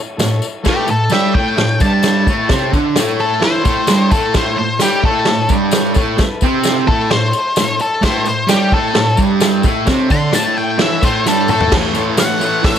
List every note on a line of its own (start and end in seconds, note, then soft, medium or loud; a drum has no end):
0.17 0.37 A2 medium
0.17 0.47 E4 medium
0.17 0.47 A4 medium
0.17 0.48 C#5 medium
0.17 snare loud
0.17 tambourine medium
0.17 crash medium
0.42 tambourine medium
0.63 0.86 A2 loud
0.63 0.88 A3 loud
0.63 0.93 E4 medium
0.63 0.93 A4 medium
0.63 0.94 B4 medium
0.63 kick loud
0.63 snare loud
0.63 tambourine medium
0.63 crash medium
0.69 0.90 G4 loud
0.87 1.06 A2 medium
0.87 1.12 A4 medium
0.87 tambourine medium
1.10 1.33 G3 loud
1.10 1.41 E4 medium
1.10 1.34 G4 loud
1.10 1.41 A4 medium
1.10 1.41 C#5 medium
1.10 1.34 E5 medium
1.10 snare loud
1.10 tambourine loud
1.10 crash soft
1.33 1.55 A2 medium
1.33 1.57 A3 medium
1.33 1.79 G5 medium
1.33 kick loud
1.56 1.75 A2 medium
1.56 1.86 E4 medium
1.56 1.86 A4 medium
1.56 1.87 C#5 medium
1.56 snare loud
1.56 tambourine soft
1.56 crash medium
1.80 2.26 G2 medium
1.80 2.27 G3 loud
1.80 2.71 A5 loud
1.80 kick loud
1.80 tambourine medium
2.03 2.33 E4 medium
2.03 2.33 A4 medium
2.03 2.34 C#5 medium
2.03 snare loud
2.03 tambourine medium
2.03 crash medium
2.27 2.49 A2 loud
2.27 2.50 A3 loud
2.27 kick loud
2.27 tambourine medium
2.48 2.72 C3 medium
2.48 2.73 C4 loud
2.48 2.78 E4 medium
2.48 2.79 A4 medium
2.48 2.79 C#5 medium
2.48 kick loud
2.48 snare loud
2.48 tambourine medium
2.48 crash medium
2.73 2.95 D3 medium
2.73 2.96 D4 loud
2.73 kick loud
2.73 tambourine medium
2.95 3.41 A2 medium
2.95 3.42 A3 loud
2.95 3.25 E4 medium
2.95 3.25 A4 medium
2.95 3.25 C#5 medium
2.95 snare loud
2.95 tambourine loud
2.95 crash soft
3.19 3.42 A4 medium
3.19 tambourine soft
3.41 3.63 E3 medium
3.41 3.71 E4 medium
3.41 3.65 E4 loud
3.41 3.71 A4 medium
3.41 4.10 C5 loud
3.41 3.72 C#5 medium
3.41 snare loud
3.41 crash medium
3.64 3.87 A2 medium
3.64 3.88 A3 loud
3.64 kick loud
3.64 tambourine medium
3.87 4.10 G2 medium
3.87 4.11 G3 medium
3.87 4.17 E4 medium
3.87 4.17 A4 medium
3.87 4.17 C#5 medium
3.87 snare loud
3.87 tambourine loud
3.87 crash medium
4.10 4.33 A2 medium
4.10 4.34 A3 loud
4.10 4.34 A4 loud
4.10 kick loud
4.10 tambourine medium
4.34 4.56 A2 loud
4.34 4.57 A3 loud
4.34 4.63 E4 medium
4.34 4.64 A4 medium
4.34 4.57 C5 medium
4.34 4.64 C#5 medium
4.34 kick loud
4.34 snare loud
4.34 tambourine medium
4.34 crash medium
4.57 4.76 A2 medium
4.57 4.80 C5 medium
4.79 5.03 G3 medium
4.79 5.10 E4 medium
4.79 5.03 G4 loud
4.79 5.03 G4 medium
4.79 5.10 A4 medium
4.79 5.11 C#5 medium
4.79 snare loud
4.79 tambourine loud
4.79 crash medium
5.04 5.26 A2 medium
5.04 5.27 A3 medium
5.04 5.49 A4 medium
5.04 kick loud
5.25 5.46 A2 medium
5.25 5.56 E4 medium
5.25 5.57 A4 medium
5.25 5.57 C#5 medium
5.25 snare loud
5.25 tambourine soft
5.25 crash medium
5.49 5.95 G2 medium
5.49 5.95 G3 loud
5.49 kick loud
5.49 tambourine medium
5.71 6.02 E4 medium
5.71 6.03 A4 medium
5.71 6.03 C#5 medium
5.71 snare loud
5.71 tambourine loud
5.71 crash medium
5.94 6.17 A2 loud
5.94 6.18 A3 loud
5.94 kick loud
5.94 tambourine medium
6.17 6.47 E4 medium
6.17 6.47 A4 medium
6.17 6.48 B4 medium
6.17 muted distorted electric guitar stroke medium
6.17 kick loud
6.17 snare loud
6.17 tambourine medium
6.17 crash soft
6.41 6.87 C3 medium
6.41 6.88 C4 medium
6.41 kick medium
6.41 tambourine medium
6.62 6.93 E4 medium
6.62 6.93 A4 medium
6.62 6.94 E5 medium
6.62 snare medium
6.62 tambourine loud
6.62 crash medium
6.88 7.10 A2 medium
6.88 7.11 A3 loud
6.88 7.10 A4 loud
6.88 kick loud
7.10 7.30 A2 medium
7.10 7.40 E4 medium
7.10 7.40 A4 medium
7.10 7.78 C5 loud
7.10 7.41 C#5 medium
7.10 snare loud
7.10 tambourine soft
7.10 crash medium
7.33 tambourine medium
7.56 7.76 A2 medium
7.56 7.86 E4 medium
7.56 7.86 A4 medium
7.56 7.87 C#5 medium
7.56 snare loud
7.56 tambourine loud
7.56 crash medium
7.79 8.03 A4 loud
7.79 tambourine medium
8.01 8.24 A2 loud
8.01 8.25 A3 loud
8.01 8.31 E4 medium
8.01 8.31 A4 medium
8.01 8.32 B4 medium
8.01 kick loud
8.01 snare loud
8.01 tambourine medium
8.01 crash medium
8.05 8.27 C5 loud
8.25 8.44 A2 medium
8.25 8.50 C5 medium
8.25 tambourine medium
8.47 8.71 G3 loud
8.47 8.79 E4 medium
8.47 8.71 G4 loud
8.47 8.72 G4 loud
8.47 snare loud
8.47 tambourine loud
8.47 crash medium
8.52 8.80 A4 medium
8.52 8.80 C#5 medium
8.70 8.93 A2 medium
8.70 8.94 A3 medium
8.70 9.18 A4 loud
8.70 kick loud
8.94 9.13 A2 medium
8.94 9.25 E4 medium
8.94 9.25 A4 medium
8.94 9.25 C#5 medium
8.94 snare loud
8.94 tambourine soft
8.94 crash medium
9.17 9.63 G2 loud
9.17 9.64 G3 loud
9.17 kick loud
9.17 tambourine medium
9.40 9.70 E4 medium
9.40 9.71 A4 medium
9.40 9.71 E5 medium
9.40 snare loud
9.40 tambourine medium
9.40 crash medium
9.63 9.86 A2 loud
9.63 9.87 A3 loud
9.63 kick loud
9.63 tambourine medium
9.85 10.09 C3 loud
9.85 10.10 C4 loud
9.85 10.15 E4 medium
9.85 10.16 A4 medium
9.85 10.16 C#5 medium
9.85 kick loud
9.85 snare loud
9.85 tambourine medium
9.85 crash medium
10.10 10.32 D3 loud
10.10 10.33 D4 medium
10.10 10.34 C6 loud
10.10 kick loud
10.10 tambourine medium
10.32 10.78 A2 loud
10.32 10.79 A3 loud
10.32 10.62 E4 medium
10.32 10.63 A4 medium
10.32 10.63 C#5 medium
10.32 10.56 A5 loud
10.32 snare loud
10.32 tambourine loud
10.32 crash medium
10.57 10.80 G5 medium
10.57 tambourine soft
10.79 11.02 E3 loud
10.79 11.09 E4 medium
10.79 11.02 E4 loud
10.79 11.09 A4 medium
10.79 11.10 C#5 medium
10.79 11.03 E5 medium
10.79 snare loud
10.79 tambourine soft
10.79 crash medium
11.03 11.25 A2 medium
11.03 11.25 A3 loud
11.03 11.26 C5 loud
11.03 kick loud
11.03 tambourine medium
11.25 11.48 G2 loud
11.25 11.48 G3 loud
11.25 11.55 E4 medium
11.25 11.55 A4 medium
11.25 11.49 A4 loud
11.25 11.56 C#5 medium
11.25 snare medium
11.25 tambourine medium
11.47 11.69 A2 medium
11.47 11.71 A3 loud
11.47 11.72 A4 loud
11.47 mid tom medium
11.47 tambourine medium
11.60 floor tom medium
11.70 12.17 A2 medium
11.70 11.97 E3 loud
11.70 11.93 A3 medium
11.70 11.86 E4 medium
11.70 11.86 A4 medium
11.70 11.86 C#5 medium
11.70 kick loud
11.70 snare loud
11.70 crash loud
11.94 12.19 E3 medium
11.94 12.20 A3 medium
11.94 12.09 E4 medium
11.94 12.09 A4 medium
11.94 12.10 C#5 medium
11.94 tambourine medium
12.17 12.43 A2 medium
12.17 12.41 E3 medium
12.17 12.39 A3 medium
12.17 12.47 E4 medium
12.17 12.47 A4 medium
12.17 12.48 C#5 medium
12.17 12.66 F#5 medium
12.17 snare loud
12.17 open hi-hat medium
12.17 tambourine loud
12.29 tambourine soft
12.40 12.62 A2 medium
12.40 12.64 E3 medium
12.40 12.66 A3 medium
12.40 tambourine medium
12.53 tambourine soft
12.62 12.79 A2 medium
12.62 12.79 E3 loud
12.62 12.79 E4 medium
12.62 12.79 A4 medium
12.62 12.79 C#5 medium
12.62 12.79 E5 loud
12.62 kick loud
12.62 snare loud
12.62 open hi-hat medium
12.62 tambourine soft
12.67 12.79 A3 medium